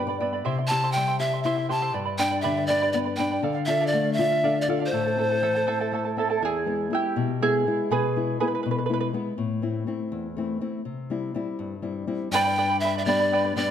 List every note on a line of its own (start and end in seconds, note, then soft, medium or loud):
0.00 0.41 G2 medium
0.00 0.20 G3 medium
0.00 0.14 G5 loud
0.07 0.20 B4 soft
0.07 0.19 D5 medium
0.07 0.20 D5 medium
0.07 0.21 B5 medium
0.20 0.44 B3 medium
0.20 0.33 B4 medium
0.20 0.32 D5 medium
0.20 0.44 E5 medium
0.20 0.33 G5 medium
0.20 0.32 B5 medium
0.33 0.45 B4 soft
0.33 0.45 D5 soft
0.33 0.45 B5 medium
0.45 1.90 C3 medium
0.45 0.58 E4 medium
0.45 0.57 G4 medium
0.45 0.57 C5 medium
0.45 0.57 E5 medium
0.45 0.57 C6 medium
0.58 0.70 E4 soft
0.58 0.70 E5 soft
0.58 0.70 C6 medium
0.67 0.83 E4 medium
0.67 0.83 G4 medium
0.67 0.83 C5 medium
0.67 0.83 E5 medium
0.67 0.94 A5 loud
0.71 0.95 G4 medium
0.71 0.83 C6 medium
0.84 0.95 E4 medium
0.84 0.96 G4 medium
0.84 0.95 C5 medium
0.84 0.96 E5 medium
0.84 0.96 C6 medium
0.92 1.18 G5 loud
0.96 1.20 G3 medium
0.96 1.08 E4 medium
0.96 1.08 C5 medium
0.96 1.07 E5 medium
0.96 1.07 C6 medium
1.08 1.19 E4 soft
1.08 1.19 E5 soft
1.08 1.20 C6 soft
1.19 1.32 E4 medium
1.19 1.44 G4 medium
1.19 1.32 C5 medium
1.19 1.43 E5 medium
1.19 1.33 E5 medium
1.19 1.32 C6 medium
1.33 1.44 E4 soft
1.33 1.45 E5 soft
1.33 1.45 C6 soft
1.43 1.69 E4 medium
1.43 1.57 E4 medium
1.43 1.57 G4 medium
1.43 1.57 C5 medium
1.43 1.67 E5 medium
1.43 1.57 E5 medium
1.43 1.56 C6 loud
1.57 1.68 E4 soft
1.57 1.69 E5 soft
1.57 1.69 C6 soft
1.69 1.81 E4 medium
1.69 1.82 G4 medium
1.69 1.94 G4 medium
1.69 1.81 C5 medium
1.69 1.81 E5 medium
1.69 1.93 A5 medium
1.69 1.81 C6 medium
1.82 1.93 E4 medium
1.82 1.95 G4 medium
1.82 1.92 C5 soft
1.82 1.93 E5 medium
1.82 1.94 C6 medium
1.93 3.39 G2 medium
1.93 2.06 B4 medium
1.93 2.05 D5 medium
1.93 2.06 G5 medium
1.93 2.04 B5 medium
2.05 2.17 B4 soft
2.05 2.18 D5 soft
2.05 2.18 B5 medium
2.18 2.43 D4 medium
2.18 2.31 B4 medium
2.18 2.30 D5 medium
2.18 2.31 G5 medium
2.18 2.41 G5 loud
2.18 2.30 B5 medium
2.31 2.43 B4 soft
2.31 2.43 D5 medium
2.31 2.43 B5 medium
2.41 2.68 D3 medium
2.41 2.56 G4 medium
2.41 2.56 B4 medium
2.41 2.56 D5 medium
2.41 2.68 E5 medium
2.41 2.56 G5 medium
2.41 2.55 B5 medium
2.57 2.68 B4 soft
2.57 2.68 D5 soft
2.57 2.69 B5 medium
2.67 2.93 D4 medium
2.67 2.81 G4 medium
2.67 2.81 B4 medium
2.67 2.92 D5 medium
2.67 2.81 D5 medium
2.67 2.82 G5 medium
2.67 2.81 B5 medium
2.82 2.94 G4 medium
2.82 2.93 B4 medium
2.82 2.94 D5 medium
2.82 2.93 G5 medium
2.82 2.94 B5 medium
2.92 3.18 B3 medium
2.92 3.05 B4 medium
2.92 2.98 D5 medium
2.92 3.05 D5 medium
2.92 3.06 G5 medium
2.92 3.04 B5 medium
3.05 3.18 B4 soft
3.05 3.18 D5 medium
3.05 3.18 B5 soft
3.16 3.43 D4 medium
3.16 3.31 B4 medium
3.16 3.31 D5 medium
3.16 3.40 G5 medium
3.16 3.30 G5 medium
3.16 3.30 B5 medium
3.32 3.43 B4 soft
3.32 3.42 D5 medium
3.32 3.43 B5 medium
3.43 4.87 D3 medium
3.43 3.55 A4 medium
3.43 3.55 D5 medium
3.43 3.53 F5 medium
3.55 3.67 D5 soft
3.55 3.67 F5 medium
3.66 3.92 F4 medium
3.66 3.80 A4 medium
3.66 3.79 D5 medium
3.66 3.88 E5 medium
3.66 3.79 F5 medium
3.80 3.92 A4 medium
3.80 3.92 D5 medium
3.80 3.92 F5 medium
3.87 4.12 D5 medium
3.93 4.17 A3 medium
3.93 4.05 A4 medium
3.93 4.05 D5 medium
3.93 4.04 F5 medium
4.05 4.18 D5 soft
4.05 4.17 F5 medium
4.13 4.61 E5 loud
4.19 4.42 F4 medium
4.19 4.31 A4 medium
4.19 4.31 D5 medium
4.19 4.30 F5 medium
4.31 4.43 D5 soft
4.31 4.43 F5 soft
4.44 4.67 D4 medium
4.44 4.55 A4 medium
4.44 4.55 D5 medium
4.44 4.55 F5 medium
4.56 4.68 D5 soft
4.56 4.67 F5 medium
4.61 4.67 D5 medium
4.68 4.92 F4 medium
4.68 4.80 A4 medium
4.68 4.80 D5 medium
4.68 4.79 F5 medium
4.80 4.93 A4 medium
4.80 4.93 D5 medium
4.80 4.92 F5 medium
4.86 6.08 C5 medium
4.92 6.36 A2 medium
4.92 5.05 E4 medium
4.92 5.05 A4 medium
4.92 5.05 E5 medium
4.92 5.04 A5 medium
5.05 5.17 E4 soft
5.05 5.17 A4 medium
5.05 5.17 A5 medium
5.17 5.40 C4 medium
5.17 5.30 E4 medium
5.17 5.30 A4 medium
5.17 5.30 E5 medium
5.17 5.29 A5 medium
5.30 5.42 E4 soft
5.30 5.42 A4 soft
5.30 5.42 A5 medium
5.42 5.66 E3 soft
5.42 5.54 E4 medium
5.42 5.54 A4 medium
5.42 5.54 C5 medium
5.42 5.54 E5 medium
5.42 5.54 A5 medium
5.55 5.66 E4 soft
5.55 5.66 A4 medium
5.55 5.66 A5 soft
5.67 5.91 C4 medium
5.67 5.79 E4 medium
5.67 5.79 A4 medium
5.67 5.79 C5 medium
5.67 5.79 E5 medium
5.67 5.79 A5 loud
5.81 5.92 E4 medium
5.81 5.92 A4 medium
5.81 5.92 C5 medium
5.81 5.92 E5 medium
5.81 5.92 A5 medium
5.92 6.15 A3 medium
5.92 6.04 E4 medium
5.92 6.04 A4 medium
5.92 6.04 E5 medium
5.92 6.04 A5 medium
6.05 6.17 E4 soft
6.05 6.17 A4 medium
6.05 6.16 A5 medium
6.17 6.40 C4 medium
6.17 6.29 E4 medium
6.17 6.29 A4 medium
6.17 6.29 E5 medium
6.17 6.29 A5 medium
6.30 6.41 E4 soft
6.30 6.41 A4 soft
6.30 6.41 A5 medium
6.42 6.89 E2 medium
6.42 6.87 E4 medium
6.42 6.93 G#4 medium
6.66 6.89 G#3 soft
6.66 6.90 B3 soft
6.66 6.90 E4 soft
6.90 7.30 G#3 soft
6.90 7.30 B3 soft
6.90 7.30 E4 soft
6.90 7.37 E4 medium
6.95 7.42 G4 medium
7.16 7.63 B2 medium
7.41 7.66 G#3 soft
7.41 7.66 B3 soft
7.41 7.67 E4 soft
7.41 7.87 E4 medium
7.41 7.90 G#4 medium
7.67 8.05 G#3 soft
7.67 8.05 B3 soft
7.67 8.06 E4 medium
7.91 8.38 B2 medium
7.91 8.36 G#4 medium
7.91 8.36 B4 medium
8.16 8.39 G#3 soft
8.16 8.40 B3 soft
8.16 8.41 E4 medium
8.40 8.79 G#3 soft
8.40 8.80 B3 soft
8.40 8.80 E4 soft
8.40 8.46 G#4 medium
8.40 8.46 B4 medium
8.48 8.54 B4 medium
8.55 8.61 B4 medium
8.63 9.12 B2 medium
8.63 8.69 B4 soft
8.71 8.77 B4 medium
8.78 8.84 B4 soft
8.86 9.12 G#3 soft
8.86 9.13 B3 soft
8.86 9.13 E4 soft
8.86 8.92 B4 medium
8.94 8.99 B4 medium
9.01 9.06 B4 medium
9.13 9.33 G#3 soft
9.13 9.33 B3 soft
9.13 9.33 E4 medium
9.38 9.85 A2 medium
9.62 9.86 A3 soft
9.62 9.86 C4 soft
9.62 9.87 E4 soft
9.87 10.26 A3 soft
9.87 10.27 C4 soft
9.87 10.27 E4 soft
10.12 10.59 E2 medium
10.37 10.60 A3 soft
10.37 10.60 C4 soft
10.37 10.61 E4 soft
10.61 10.81 A3 soft
10.61 10.81 C4 soft
10.61 10.81 E4 soft
10.85 11.33 C3 medium
11.10 11.33 G3 soft
11.10 11.34 C4 soft
11.10 11.34 E4 soft
11.34 11.74 G3 soft
11.34 11.74 C4 soft
11.34 11.75 E4 soft
11.59 12.07 G2 medium
11.82 12.06 G3 soft
11.82 12.06 C4 soft
11.82 12.07 E4 soft
12.07 12.28 G3 soft
12.07 12.27 C4 soft
12.07 12.28 E4 medium
12.31 13.71 G2 medium
12.31 12.46 G4 medium
12.31 12.46 B4 medium
12.31 12.45 D5 medium
12.31 12.79 G5 loud
12.31 12.46 G5 medium
12.31 12.44 B5 medium
12.45 12.57 B4 medium
12.45 12.57 D5 medium
12.45 12.57 B5 medium
12.58 12.70 G4 medium
12.58 12.70 B4 medium
12.58 12.69 D5 medium
12.58 12.70 G5 medium
12.58 12.68 B5 medium
12.70 12.83 B4 soft
12.70 12.83 D5 medium
12.70 12.82 B5 medium
12.80 12.96 B4 medium
12.80 12.98 E5 loud
12.80 12.95 G5 medium
12.84 12.96 D5 medium
12.84 12.95 B5 medium
12.96 13.07 B4 soft
12.96 13.07 D5 soft
12.96 13.07 E5 medium
12.96 13.07 B5 medium
13.05 13.54 G3 medium
13.05 13.54 B3 medium
13.05 13.55 D4 medium
13.05 13.20 G4 medium
13.05 13.20 B4 medium
13.05 13.55 D5 loud
13.05 13.20 D5 medium
13.05 13.20 G5 medium
13.05 13.19 B5 medium
13.20 13.32 B4 soft
13.20 13.32 D5 medium
13.20 13.32 B5 medium
13.32 13.44 G4 medium
13.32 13.45 B4 loud
13.32 13.44 D5 loud
13.32 13.45 G5 medium
13.32 13.43 B5 loud
13.45 13.56 B4 soft
13.45 13.57 D5 soft
13.45 13.57 B5 medium
13.56 13.71 G3 medium
13.56 13.71 B3 medium
13.56 13.71 D4 medium
13.56 13.69 G4 medium
13.56 13.69 B4 medium
13.56 13.71 D5 loud
13.56 13.69 D5 loud
13.56 13.69 G5 medium
13.56 13.68 B5 medium